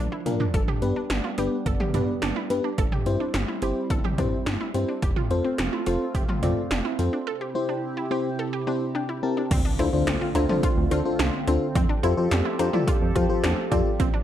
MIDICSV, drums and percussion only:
0, 0, Header, 1, 2, 480
1, 0, Start_track
1, 0, Tempo, 560748
1, 462, Time_signature, 4, 2, 24, 8
1, 12183, End_track
2, 0, Start_track
2, 0, Title_t, "Drums"
2, 223, Note_on_c, 9, 42, 67
2, 223, Note_on_c, 9, 45, 83
2, 309, Note_off_c, 9, 42, 0
2, 309, Note_off_c, 9, 45, 0
2, 342, Note_on_c, 9, 43, 86
2, 428, Note_off_c, 9, 43, 0
2, 462, Note_on_c, 9, 36, 111
2, 462, Note_on_c, 9, 42, 78
2, 547, Note_off_c, 9, 36, 0
2, 548, Note_off_c, 9, 42, 0
2, 580, Note_on_c, 9, 45, 88
2, 666, Note_off_c, 9, 45, 0
2, 702, Note_on_c, 9, 42, 50
2, 788, Note_off_c, 9, 42, 0
2, 941, Note_on_c, 9, 38, 116
2, 941, Note_on_c, 9, 42, 74
2, 1026, Note_off_c, 9, 42, 0
2, 1027, Note_off_c, 9, 38, 0
2, 1180, Note_on_c, 9, 42, 74
2, 1265, Note_off_c, 9, 42, 0
2, 1421, Note_on_c, 9, 36, 99
2, 1421, Note_on_c, 9, 42, 73
2, 1507, Note_off_c, 9, 36, 0
2, 1507, Note_off_c, 9, 42, 0
2, 1540, Note_on_c, 9, 47, 87
2, 1626, Note_off_c, 9, 47, 0
2, 1661, Note_on_c, 9, 42, 68
2, 1662, Note_on_c, 9, 45, 96
2, 1746, Note_off_c, 9, 42, 0
2, 1747, Note_off_c, 9, 45, 0
2, 1900, Note_on_c, 9, 38, 110
2, 1901, Note_on_c, 9, 42, 62
2, 1985, Note_off_c, 9, 38, 0
2, 1986, Note_off_c, 9, 42, 0
2, 2141, Note_on_c, 9, 42, 69
2, 2227, Note_off_c, 9, 42, 0
2, 2380, Note_on_c, 9, 42, 74
2, 2381, Note_on_c, 9, 36, 111
2, 2466, Note_off_c, 9, 42, 0
2, 2467, Note_off_c, 9, 36, 0
2, 2499, Note_on_c, 9, 45, 90
2, 2585, Note_off_c, 9, 45, 0
2, 2620, Note_on_c, 9, 42, 53
2, 2706, Note_off_c, 9, 42, 0
2, 2858, Note_on_c, 9, 38, 115
2, 2858, Note_on_c, 9, 42, 76
2, 2944, Note_off_c, 9, 38, 0
2, 2944, Note_off_c, 9, 42, 0
2, 3098, Note_on_c, 9, 42, 72
2, 3184, Note_off_c, 9, 42, 0
2, 3340, Note_on_c, 9, 36, 103
2, 3340, Note_on_c, 9, 42, 71
2, 3425, Note_off_c, 9, 42, 0
2, 3426, Note_off_c, 9, 36, 0
2, 3460, Note_on_c, 9, 47, 84
2, 3545, Note_off_c, 9, 47, 0
2, 3580, Note_on_c, 9, 36, 87
2, 3581, Note_on_c, 9, 42, 67
2, 3582, Note_on_c, 9, 45, 96
2, 3666, Note_off_c, 9, 36, 0
2, 3666, Note_off_c, 9, 42, 0
2, 3667, Note_off_c, 9, 45, 0
2, 3821, Note_on_c, 9, 38, 119
2, 3822, Note_on_c, 9, 42, 64
2, 3906, Note_off_c, 9, 38, 0
2, 3907, Note_off_c, 9, 42, 0
2, 4061, Note_on_c, 9, 42, 70
2, 4147, Note_off_c, 9, 42, 0
2, 4301, Note_on_c, 9, 36, 117
2, 4301, Note_on_c, 9, 42, 78
2, 4386, Note_off_c, 9, 42, 0
2, 4387, Note_off_c, 9, 36, 0
2, 4419, Note_on_c, 9, 45, 90
2, 4505, Note_off_c, 9, 45, 0
2, 4542, Note_on_c, 9, 42, 51
2, 4627, Note_off_c, 9, 42, 0
2, 4780, Note_on_c, 9, 38, 108
2, 4780, Note_on_c, 9, 42, 78
2, 4865, Note_off_c, 9, 42, 0
2, 4866, Note_off_c, 9, 38, 0
2, 5019, Note_on_c, 9, 42, 73
2, 5105, Note_off_c, 9, 42, 0
2, 5261, Note_on_c, 9, 36, 102
2, 5262, Note_on_c, 9, 42, 75
2, 5347, Note_off_c, 9, 36, 0
2, 5347, Note_off_c, 9, 42, 0
2, 5380, Note_on_c, 9, 47, 89
2, 5466, Note_off_c, 9, 47, 0
2, 5502, Note_on_c, 9, 42, 69
2, 5503, Note_on_c, 9, 45, 96
2, 5587, Note_off_c, 9, 42, 0
2, 5588, Note_off_c, 9, 45, 0
2, 5742, Note_on_c, 9, 38, 117
2, 5743, Note_on_c, 9, 42, 67
2, 5827, Note_off_c, 9, 38, 0
2, 5828, Note_off_c, 9, 42, 0
2, 5983, Note_on_c, 9, 42, 71
2, 6068, Note_off_c, 9, 42, 0
2, 8140, Note_on_c, 9, 42, 81
2, 8140, Note_on_c, 9, 49, 97
2, 8141, Note_on_c, 9, 36, 121
2, 8226, Note_off_c, 9, 42, 0
2, 8226, Note_off_c, 9, 49, 0
2, 8227, Note_off_c, 9, 36, 0
2, 8381, Note_on_c, 9, 42, 54
2, 8467, Note_off_c, 9, 42, 0
2, 8620, Note_on_c, 9, 42, 76
2, 8621, Note_on_c, 9, 38, 120
2, 8706, Note_off_c, 9, 38, 0
2, 8706, Note_off_c, 9, 42, 0
2, 8859, Note_on_c, 9, 42, 78
2, 8859, Note_on_c, 9, 56, 64
2, 8945, Note_off_c, 9, 42, 0
2, 8945, Note_off_c, 9, 56, 0
2, 8982, Note_on_c, 9, 47, 97
2, 9068, Note_off_c, 9, 47, 0
2, 9101, Note_on_c, 9, 36, 102
2, 9102, Note_on_c, 9, 42, 78
2, 9187, Note_off_c, 9, 36, 0
2, 9187, Note_off_c, 9, 42, 0
2, 9341, Note_on_c, 9, 42, 68
2, 9427, Note_off_c, 9, 42, 0
2, 9581, Note_on_c, 9, 38, 120
2, 9582, Note_on_c, 9, 42, 68
2, 9666, Note_off_c, 9, 38, 0
2, 9667, Note_off_c, 9, 42, 0
2, 9823, Note_on_c, 9, 42, 74
2, 9908, Note_off_c, 9, 42, 0
2, 10062, Note_on_c, 9, 36, 118
2, 10062, Note_on_c, 9, 42, 81
2, 10147, Note_off_c, 9, 42, 0
2, 10148, Note_off_c, 9, 36, 0
2, 10302, Note_on_c, 9, 42, 53
2, 10388, Note_off_c, 9, 42, 0
2, 10541, Note_on_c, 9, 38, 116
2, 10541, Note_on_c, 9, 42, 81
2, 10626, Note_off_c, 9, 42, 0
2, 10627, Note_off_c, 9, 38, 0
2, 10780, Note_on_c, 9, 42, 79
2, 10780, Note_on_c, 9, 56, 64
2, 10866, Note_off_c, 9, 42, 0
2, 10866, Note_off_c, 9, 56, 0
2, 10902, Note_on_c, 9, 47, 95
2, 10988, Note_off_c, 9, 47, 0
2, 11022, Note_on_c, 9, 36, 105
2, 11022, Note_on_c, 9, 42, 78
2, 11107, Note_off_c, 9, 36, 0
2, 11108, Note_off_c, 9, 42, 0
2, 11262, Note_on_c, 9, 36, 92
2, 11262, Note_on_c, 9, 42, 71
2, 11347, Note_off_c, 9, 36, 0
2, 11348, Note_off_c, 9, 42, 0
2, 11501, Note_on_c, 9, 38, 117
2, 11502, Note_on_c, 9, 42, 68
2, 11587, Note_off_c, 9, 38, 0
2, 11588, Note_off_c, 9, 42, 0
2, 11742, Note_on_c, 9, 36, 96
2, 11742, Note_on_c, 9, 42, 73
2, 11827, Note_off_c, 9, 36, 0
2, 11827, Note_off_c, 9, 42, 0
2, 11982, Note_on_c, 9, 36, 121
2, 11982, Note_on_c, 9, 42, 82
2, 12068, Note_off_c, 9, 36, 0
2, 12068, Note_off_c, 9, 42, 0
2, 12183, End_track
0, 0, End_of_file